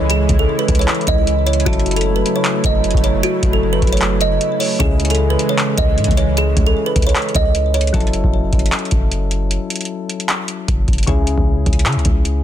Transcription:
Already playing: 808-style bass C#2, synth keys C#3 C#4 E4 G#4, analog synth pad C#3 E3 G#3 E4
0.10 kalimba G#4, closed hi-hat
0.29 808-style bass C#2, kick, closed hi-hat
0.39 kalimba A4
0.59 kalimba B4
0.68 808-style bass C#2, kick, closed hi-hat
0.75 closed hi-hat
0.79 kalimba C#5, closed hi-hat
0.88 clap, closed hi-hat
0.95 closed hi-hat
1.01 closed hi-hat
1.07 808-style bass C#2, kalimba D#5, kick, closed hi-hat
1.27 closed hi-hat
1.47 kalimba C#5, closed hi-hat
1.53 closed hi-hat
1.60 closed hi-hat
1.65 808-style bass F#1, analog synth pad C#3 F#3 A3, synth keys F#3 C#4 E4 A4, kalimba F#4, kick, closed hi-hat
1.73 closed hi-hat
1.79 closed hi-hat
1.86 closed hi-hat
1.91 closed hi-hat
1.96 kalimba A4, closed hi-hat
2.01 closed hi-hat
2.16 kalimba B4
2.26 closed hi-hat
2.36 kalimba C#5
2.44 clap, closed hi-hat
2.64 808-style bass F#1, kalimba D#5, kick, closed hi-hat
2.84 closed hi-hat
2.91 808-style bass F#1, kick, closed hi-hat
2.97 closed hi-hat
3.04 kalimba C#5, closed hi-hat
3.23 kalimba F#4, closed hi-hat
3.43 808-style bass F#1, kick, closed hi-hat
3.53 kalimba A4
3.73 kalimba B4
3.82 808-style bass F#1, kick, closed hi-hat
3.87 closed hi-hat
3.92 kalimba C#5, closed hi-hat
3.97 closed hi-hat
4.01 clap, closed hi-hat
4.21 kalimba D#5, closed hi-hat
4.41 closed hi-hat
4.60 kalimba C#5, open hi-hat
4.79 808-style bass C#2, synth keys C#3 C#4 E4 G#4, analog synth pad C#3 E3 G#3, kalimba G#4, kick, closed hi-hat
5.00 closed hi-hat
5.05 closed hi-hat
5.10 kalimba A4, closed hi-hat
5.15 closed hi-hat
5.30 kalimba B4
5.39 closed hi-hat
5.49 kalimba C#5
5.58 clap, closed hi-hat
5.77 808-style bass C#2, kalimba D#5, kick, closed hi-hat
5.98 808-style bass G#2, closed hi-hat
6.04 808-style bass C#2, kick, closed hi-hat
6.11 closed hi-hat
6.17 kalimba C#5, closed hi-hat
6.37 kalimba G#4, closed hi-hat
6.57 808-style bass C#2, kick, closed hi-hat
6.66 kalimba A4
6.86 kalimba B4
6.96 808-style bass C#2, kick, closed hi-hat
7.02 closed hi-hat
7.07 kalimba C#5, closed hi-hat
7.15 clap, closed hi-hat
7.22 closed hi-hat
7.29 closed hi-hat
7.35 808-style bass C#2, kalimba D#5, kick, closed hi-hat
7.55 closed hi-hat
7.74 kalimba C#5, closed hi-hat
7.81 closed hi-hat
7.87 closed hi-hat
7.93 808-style bass F#1, synth keys F#3 C#4 E4 A4, kick, closed hi-hat
8.00 closed hi-hat
8.07 closed hi-hat
8.13 closed hi-hat
8.24 808-style bass F#1, kick
8.53 808-style bass F#1, kick, closed hi-hat
8.59 closed hi-hat
8.66 closed hi-hat
8.72 clap, closed hi-hat
8.79 closed hi-hat
8.85 closed hi-hat
8.91 808-style bass F#1, kick, closed hi-hat
9.12 closed hi-hat
9.31 closed hi-hat
9.51 closed hi-hat
9.70 closed hi-hat
9.76 closed hi-hat
9.81 closed hi-hat
9.85 closed hi-hat
10.10 closed hi-hat
10.20 closed hi-hat
10.29 clap, closed hi-hat
10.48 closed hi-hat
10.68 808-style bass F#1, kick, closed hi-hat
10.88 808-style bass F#1, kick, closed hi-hat
10.93 closed hi-hat
10.98 closed hi-hat
11.03 synth keys C#3, closed hi-hat
11.07 808-style bass C#2, synth keys C#4 E4 G#4, kick, closed hi-hat
11.27 closed hi-hat
11.38 808-style bass C#2, kick
11.66 808-style bass C#2, kick, closed hi-hat
11.73 closed hi-hat
11.79 closed hi-hat
11.86 808-style bass C#3, clap, closed hi-hat
11.92 808-style bass C#2, closed hi-hat
11.99 closed hi-hat
12.05 808-style bass C#2, kick, closed hi-hat
12.25 closed hi-hat

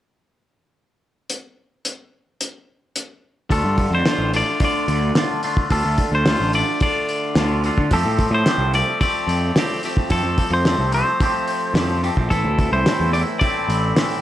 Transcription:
1.30 closed hi-hat
1.85 closed hi-hat
2.41 closed hi-hat
2.96 closed hi-hat
3.50 picked electric bass D2, clean electric guitar D3 A3 D4 F4 A4, kick, open hi-hat
3.64 picked electric bass G2
3.78 kick, open hi-hat
3.91 picked electric bass F2, clean electric guitar C5
4.05 clean electric guitar D3 A3 D4 F4, snare, open hi-hat
4.18 picked electric bass A1
4.33 clean electric guitar D3 A3 D4 F4 D5, open hi-hat
4.60 clean electric guitar D3 A3 D4 F4, kick, open hi-hat
4.65 clean electric guitar D5
4.88 picked electric bass D2, open hi-hat
5.15 clean electric guitar D3 A3 D4 F4, snare, open hi-hat
5.43 clean electric guitar D3 A3 D4 F4, open hi-hat
5.57 kick
5.70 picked electric bass D2, clean electric guitar D3 A3 D4 F4 A4, kick, open hi-hat
5.85 picked electric bass D2
5.98 kick, open hi-hat
6.12 picked electric bass D2, clean electric guitar C5
6.26 clean electric guitar D3 A3 D4 F4, snare, open hi-hat
6.40 picked electric bass A1
6.53 clean electric guitar D3 A3 D4 F4 D5, open hi-hat
6.80 clean electric guitar D3 A3 D4 F4 D5, kick, open hi-hat
7.09 open hi-hat
7.35 picked electric bass D2, clean electric guitar D3 A3 D4 F4, snare, open hi-hat
7.64 clean electric guitar D3 A3 D4 F4, open hi-hat
7.78 picked electric bass D3, kick
7.91 picked electric bass F2, clean electric guitar F3 A3 C4 G4 A4, kick, open hi-hat
8.05 picked electric bass A2
8.19 kick, open hi-hat
8.31 picked electric bass A2, clean electric guitar C5
8.46 clean electric guitar F3 A3 C4 G4, snare, open hi-hat
8.58 picked electric bass C2
8.74 clean electric guitar F3 A3 C4 G4 D5, open hi-hat
9.01 clean electric guitar F3 A3 C4 G4 D5, kick, open hi-hat
9.27 picked electric bass F2, open hi-hat
9.56 clean electric guitar F3 A3 C4 G4, snare, open hi-hat
9.83 clean electric guitar F3 A3 C4 G4, open hi-hat
9.97 kick
10.10 picked electric bass F2, clean electric guitar F3 A3 C4 G4 A4, kick, open hi-hat
10.24 picked electric bass F2
10.38 kick, open hi-hat
10.50 picked electric bass F2, clean electric guitar C5
10.65 clean electric guitar F3 A3 C4 G4, snare, open hi-hat
10.78 picked electric bass C2
10.92 clean electric guitar F3 A3 C4 G4 C5, open hi-hat
11.20 clean electric guitar F3 A3 C4 G4, kick, open hi-hat
11.48 open hi-hat
11.74 picked electric bass F2, clean electric guitar F3 A3 C4 G4, snare, open hi-hat
12.03 clean electric guitar F3 A3 C4 G4, open hi-hat
12.17 picked electric bass A#1, kick
12.30 picked electric bass A1, clean electric guitar A2 E3 A3 C4 E4 A4, kick, open hi-hat
12.44 picked electric bass D2
12.59 kick, open hi-hat
12.72 picked electric bass C2, clean electric guitar C5
12.86 clean electric guitar A2 E3 A3 C4 E4, snare, open hi-hat
13.00 picked electric bass E2
13.13 clean electric guitar A2 E3 A3 C4 E4 D5, open hi-hat
13.39 clean electric guitar A2 E3 A3 C4 E4 D5, kick, open hi-hat
13.68 picked electric bass A1, open hi-hat
13.96 clean electric guitar A2 E3 A3 C4 E4, snare, open hi-hat

